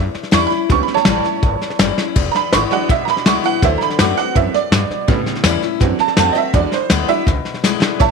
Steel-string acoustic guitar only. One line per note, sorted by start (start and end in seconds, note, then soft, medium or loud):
0.00 0.66 E2 loud
0.31 0.50 E3 medium
0.31 0.50 G3 medium
0.31 0.51 C#4 loud
0.31 0.49 E4 loud
0.50 0.70 C#4 medium
0.50 0.69 E4 medium
0.70 1.40 A2 medium
1.06 1.24 E3 loud
1.06 1.24 G3 medium
1.06 1.25 C#4 loud
1.06 1.23 E4 loud
1.24 1.43 C#4 soft
1.24 1.42 E4 soft
1.43 2.12 E2 medium
1.79 1.97 E3 medium
1.79 1.97 G3 loud
1.79 1.97 C#4 medium
1.79 1.97 E4 loud
1.98 2.16 C#4 soft
1.98 2.15 E4 medium
2.16 2.85 E2 loud
2.53 2.87 D3 medium
2.53 2.88 G#3 loud
2.53 2.88 B3 loud
2.53 2.88 E4 loud
2.90 3.59 B2 loud
3.26 3.43 D3 medium
3.26 3.44 G#3 loud
3.26 3.44 B3 medium
3.26 3.43 E4 medium
3.44 3.62 B3 soft
3.44 3.61 E4 medium
3.63 3.98 D3 medium
4.00 4.17 D3 loud
4.00 4.17 A3 medium
4.00 4.17 C4 loud
4.00 4.16 F#4 loud
4.17 4.35 C4 soft
4.17 4.34 F#4 medium
4.36 4.70 F#2 medium
4.72 5.07 B2 medium
5.08 5.77 A2 loud
5.44 5.62 E3 medium
5.44 5.62 G3 medium
5.44 5.62 C#4 loud
5.44 5.61 E4 loud
5.62 5.81 C#4 medium
5.62 5.80 E4 medium
5.81 6.16 D3 medium
6.17 6.35 D3 medium
6.17 6.35 A3 medium
6.17 6.35 C4 medium
6.17 6.34 F#4 loud
6.35 6.54 C4 medium
6.35 6.53 F#4 medium
6.54 7.23 E2 medium
6.90 7.08 D3 medium
6.90 7.08 G#3 loud
6.90 7.09 B3 loud
6.90 7.07 E4 loud
7.08 7.27 B3 medium
7.08 7.26 E4 medium
7.28 7.97 B2 loud
7.64 7.99 D3 medium
7.64 7.99 G#3 loud
7.64 7.99 B3 loud
7.64 7.99 E4 loud
8.01 8.11 A2 medium